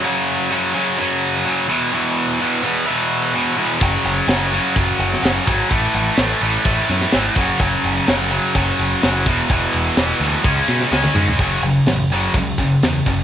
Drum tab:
CC |----------------|----------------|x---------------|----------------|
RD |----------------|----------------|--x-x-x-x-x-x-x-|x-x-x-x-x-x-x-x-|
SD |----------------|----------------|----o------oo---|----o-----ooo---|
T1 |----------------|----------------|----------------|----------------|
T2 |----------------|----------------|----------------|----------------|
FT |----------------|----------------|----------------|----------------|
BD |----------------|----------------|o-------o-----o-|o-------o-----o-|

CC |----------------|----------------|x-x-x-x-x-x-x-x-|
RD |x-x-x-x-x-x-x-x-|x-x-x-x-x-x-----|----------------|
SD |----o-------o---|----o-----ooo---|----o-------o---|
T1 |----------------|-------------o--|----------------|
T2 |----------------|--------------o-|----------------|
FT |----------------|---------------o|----------------|
BD |o-------o-----o-|o-------o-------|o-------o-o---o-|